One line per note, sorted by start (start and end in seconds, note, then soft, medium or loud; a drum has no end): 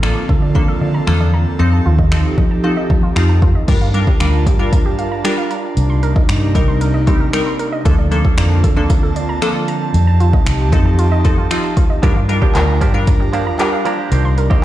0.00 0.14 A1 medium
0.00 1.57 D3 medium
0.00 0.28 F3 medium
0.00 1.56 A#3 medium
0.00 0.28 A#3 medium
0.00 3.64 C4 medium
0.00 0.28 D4 medium
0.00 1.57 F4 medium
0.00 3.64 A4 medium
0.00 0.28 A4 loud
0.00 0.10 D5 medium
0.00 finger snap loud
0.29 0.66 D3 medium
0.29 0.36 A4 medium
0.29 kick medium
0.42 0.49 D5 medium
0.55 0.80 F3 medium
0.55 0.80 A#3 medium
0.55 0.80 D4 medium
0.55 0.80 A4 loud
0.55 0.63 A#5 medium
0.55 kick medium
0.68 0.76 A4 loud
0.81 1.00 D3 medium
0.81 0.89 D5 medium
0.94 1.02 A#5 medium
1.07 1.45 E2 medium
1.07 1.32 F3 medium
1.07 1.32 A#3 medium
1.07 1.33 D4 medium
1.07 1.15 A4 loud
1.07 1.33 A4 loud
1.07 finger snap loud
1.21 1.28 D5 medium
1.34 1.41 A#5 medium
1.59 1.78 F2 medium
1.59 1.84 F3 medium
1.59 3.66 F3 medium
1.59 1.85 C4 medium
1.59 1.85 D#4 medium
1.59 3.66 D#4 medium
1.59 3.66 G4 medium
1.59 1.85 A4 loud
1.73 1.80 A5 medium
1.86 2.23 D#2 medium
1.86 1.93 F4 medium
1.99 2.06 D#5 medium
1.99 kick medium
2.11 2.37 F3 medium
2.11 2.37 C4 medium
2.11 2.37 D#4 medium
2.11 2.37 A4 medium
2.11 finger snap loud
2.38 2.75 F3 medium
2.38 2.45 D#5 medium
2.38 kick medium
2.51 2.58 A5 medium
2.64 2.89 F3 medium
2.64 2.89 C4 medium
2.64 2.89 D#4 medium
2.64 2.71 F4 medium
2.64 2.89 A4 medium
2.77 2.84 D#5 medium
2.90 3.09 F3 medium
2.90 2.97 A5 medium
2.90 kick medium
3.03 3.10 F4 medium
3.16 3.53 F2 medium
3.16 3.41 F3 medium
3.16 3.41 C4 medium
3.16 3.41 D#4 medium
3.16 3.41 F4 loud
3.16 finger snap loud
3.29 3.36 A5 medium
3.42 3.49 F4 medium
3.42 kick medium
3.55 3.62 D#5 medium
3.68 4.06 G2 loud
3.68 3.81 G3 medium
3.68 5.75 G3 medium
3.68 3.81 D4 medium
3.68 7.82 D4 medium
3.68 5.75 F4 medium
3.68 3.81 F4 medium
3.68 3.75 G4 medium
3.68 5.75 A#4 medium
3.68 3.81 A#4 loud
3.68 5.75 A5 medium
3.68 kick loud
3.68 closed hi-hat medium
3.68 crash medium
3.81 3.89 F5 medium
3.94 4.07 G3 medium
3.94 4.07 D4 medium
3.94 4.07 F4 medium
3.94 4.07 A#4 loud
3.94 closed hi-hat medium
4.07 4.15 G4 medium
4.07 kick medium
4.20 4.46 D2 medium
4.20 4.39 G3 medium
4.20 4.39 D4 medium
4.20 4.39 F4 medium
4.20 4.39 A#4 loud
4.20 4.28 F5 medium
4.20 finger snap loud
4.20 closed hi-hat medium
4.46 5.21 G2 medium
4.46 4.54 G4 medium
4.46 kick medium
4.46 closed hi-hat medium
4.59 4.91 G3 medium
4.59 4.91 D4 medium
4.59 4.91 F4 medium
4.59 4.91 A#4 loud
4.59 4.67 F5 medium
4.73 4.80 A#5 medium
4.73 kick medium
4.73 closed hi-hat loud
4.86 4.93 G4 loud
4.99 5.06 F5 medium
4.99 closed hi-hat medium
5.12 5.19 A#5 medium
5.24 5.75 G3 medium
5.24 5.75 D4 medium
5.24 5.75 F4 medium
5.24 5.32 G4 loud
5.24 5.75 A#4 loud
5.24 finger snap loud
5.24 closed hi-hat loud
5.38 5.45 F5 medium
5.51 5.58 A#5 medium
5.51 closed hi-hat medium
5.77 6.14 C2 loud
5.77 7.83 C3 medium
5.77 7.83 G3 medium
5.77 7.83 A#3 medium
5.77 7.83 D#4 medium
5.77 closed hi-hat medium
5.90 5.97 C6 medium
6.03 6.10 A#4 medium
6.03 closed hi-hat medium
6.16 6.23 D#5 medium
6.16 kick medium
6.29 6.57 G2 medium
6.29 finger snap loud
6.29 closed hi-hat medium
6.55 7.30 C2 medium
6.55 6.80 G3 loud
6.55 6.80 C4 medium
6.55 6.80 D#4 medium
6.55 6.80 A#4 loud
6.55 6.62 D#5 medium
6.55 kick medium
6.55 closed hi-hat medium
6.68 6.75 C6 medium
6.81 6.88 A#4 medium
6.81 closed hi-hat medium
6.94 7.01 D#5 medium
7.07 7.20 G3 medium
7.07 7.20 C4 medium
7.07 7.20 D#4 medium
7.07 7.20 G4 loud
7.07 7.14 C6 medium
7.07 kick medium
7.07 closed hi-hat medium
7.20 7.28 A#4 medium
7.33 7.58 G3 medium
7.33 7.58 C4 medium
7.33 7.59 D#4 medium
7.33 7.59 A#4 loud
7.33 finger snap loud
7.33 closed hi-hat loud
7.46 7.54 C6 medium
7.59 7.67 A#4 medium
7.59 closed hi-hat medium
7.72 7.80 D#5 medium
7.85 8.23 D2 loud
7.85 9.92 D3 medium
7.85 7.98 F3 medium
7.85 7.98 A#3 medium
7.85 9.92 A#3 medium
7.85 11.99 C4 medium
7.85 7.98 D4 medium
7.85 9.92 F4 medium
7.85 7.93 A4 loud
7.85 7.98 A4 loud
7.85 14.08 A5 medium
7.85 kick loud
7.85 closed hi-hat medium
7.99 8.06 D5 medium
8.11 8.24 F3 medium
8.11 8.24 A#3 medium
8.11 8.24 D4 medium
8.11 8.24 A4 loud
8.11 closed hi-hat medium
8.25 8.32 A4 medium
8.25 kick medium
8.37 8.64 F2 medium
8.37 8.56 F3 medium
8.37 8.56 A#3 medium
8.37 8.57 D4 medium
8.37 8.57 A4 loud
8.37 8.45 D5 medium
8.37 finger snap loud
8.37 closed hi-hat medium
8.64 9.38 D2 medium
8.64 8.71 A4 medium
8.64 kick medium
8.64 closed hi-hat medium
8.76 9.08 F3 medium
8.76 9.08 A#3 medium
8.76 9.08 D4 medium
8.76 9.08 A4 loud
8.76 8.84 D5 medium
8.90 8.97 A#5 medium
8.90 kick medium
8.90 closed hi-hat medium
9.03 9.10 A4 medium
9.16 9.23 D5 medium
9.16 closed hi-hat medium
9.29 9.36 A#5 medium
9.42 9.92 F3 loud
9.42 9.92 A#3 medium
9.42 9.92 D4 medium
9.42 9.49 A4 medium
9.42 9.92 A4 loud
9.42 finger snap loud
9.42 closed hi-hat loud
9.55 9.62 D5 medium
9.68 9.75 A#5 medium
9.68 closed hi-hat medium
9.94 10.32 F2 loud
9.94 12.01 F3 medium
9.94 12.01 D#4 medium
9.94 12.01 G4 medium
9.94 closed hi-hat medium
10.07 10.15 A5 medium
10.20 10.28 F4 medium
10.20 closed hi-hat medium
10.33 10.41 D#5 medium
10.33 kick medium
10.46 10.73 C2 medium
10.46 finger snap loud
10.46 closed hi-hat medium
10.72 11.47 F2 loud
10.72 10.98 F3 medium
10.72 10.98 C4 medium
10.72 10.98 D#4 medium
10.72 10.98 A4 loud
10.72 10.80 D#5 medium
10.72 kick medium
10.72 closed hi-hat medium
10.86 10.93 A5 medium
10.99 11.06 F4 medium
10.99 closed hi-hat medium
11.12 11.19 D#5 medium
11.24 11.37 F3 loud
11.24 11.37 C4 medium
11.24 11.37 D#4 medium
11.24 11.37 A4 loud
11.24 11.32 A5 medium
11.24 kick medium
11.24 closed hi-hat medium
11.38 11.45 F4 medium
11.51 11.76 F3 medium
11.51 11.76 C4 medium
11.51 11.76 D#4 medium
11.51 11.76 F4 loud
11.51 finger snap loud
11.51 closed hi-hat loud
11.64 11.71 A5 medium
11.77 11.84 F4 medium
11.77 kick medium
11.77 closed hi-hat medium
11.90 11.97 D#5 medium
12.03 12.40 G2 loud
12.03 12.19 F3 medium
12.03 12.15 G3 medium
12.03 14.65 G3 medium
12.03 12.16 A#3 medium
12.03 14.65 D4 medium
12.03 12.16 D4 medium
12.03 12.15 D4 medium
12.03 14.10 F4 medium
12.03 12.16 F4 medium
12.03 12.10 G4 medium
12.03 12.15 G4 medium
12.03 14.10 A#4 medium
12.03 12.16 A#4 loud
12.03 kick loud
12.03 closed hi-hat medium
12.16 12.23 F5 medium
12.16 muted clean electric guitar stroke soft
12.29 12.42 G3 medium
12.29 12.42 D4 medium
12.29 12.42 F4 medium
12.29 12.42 A#4 loud
12.29 muted clean electric guitar stroke soft
12.29 closed hi-hat medium
12.42 12.55 F3 medium
12.42 12.55 A#3 medium
12.42 12.55 D4 medium
12.42 12.55 G4 medium
12.42 12.49 G4 medium
12.42 kick medium
12.55 12.81 D2 loud
12.55 12.74 G3 medium
12.55 12.74 D4 medium
12.55 12.74 F4 medium
12.55 12.74 A#4 loud
12.55 12.62 F5 medium
12.55 clap loud
12.55 closed hi-hat medium
12.68 muted clean electric guitar stroke soft
12.81 13.56 G2 loud
12.81 12.97 F3 medium
12.81 12.94 A#3 medium
12.81 12.93 D4 medium
12.81 12.89 G4 loud
12.81 12.93 G4 medium
12.81 kick medium
12.81 closed hi-hat medium
12.94 13.26 G3 medium
12.94 13.26 D4 medium
12.94 13.26 F4 medium
12.94 13.26 A#4 loud
12.94 13.02 F5 medium
12.94 muted clean electric guitar stroke soft
13.07 13.15 A#5 medium
13.07 muted clean electric guitar stroke soft
13.07 kick medium
13.07 closed hi-hat medium
13.20 13.28 G4 medium
13.20 muted clean electric guitar stroke soft
13.33 13.49 F3 medium
13.33 13.46 A#3 medium
13.33 13.45 D4 medium
13.33 13.45 G4 medium
13.33 13.41 F5 medium
13.33 closed hi-hat medium
13.46 13.54 A#5 medium
13.46 muted clean electric guitar stroke soft
13.59 14.10 G3 medium
13.59 14.10 D4 medium
13.59 14.10 F4 medium
13.59 13.67 G4 loud
13.59 14.10 A#4 loud
13.59 muted clean electric guitar stroke soft
13.59 clap loud
13.59 closed hi-hat loud
13.72 13.80 F5 medium
13.72 muted clean electric guitar stroke soft
13.85 13.98 F3 medium
13.85 13.98 A#3 medium
13.85 13.97 D4 loud
13.85 13.97 G4 medium
13.85 13.93 A#5 medium
13.85 closed hi-hat medium
13.98 14.11 F3 soft
13.98 14.10 A#3 soft
13.98 14.11 D4 medium
13.98 14.11 G4 medium
14.11 14.49 C2 loud
14.11 14.65 C3 medium
14.11 14.28 D#3 medium
14.11 14.65 A#3 medium
14.11 14.24 A#3 medium
14.11 14.24 C4 medium
14.11 14.65 D#4 medium
14.11 14.23 G4 medium
14.11 closed hi-hat medium
14.24 14.32 C6 medium
14.24 muted clean electric guitar stroke soft
14.37 14.45 A#4 medium
14.37 muted clean electric guitar stroke soft
14.37 closed hi-hat medium
14.50 14.64 D#3 soft
14.50 14.64 A#3 medium
14.50 14.64 C4 medium
14.50 14.63 G4 medium
14.50 14.58 D#5 medium
14.50 kick medium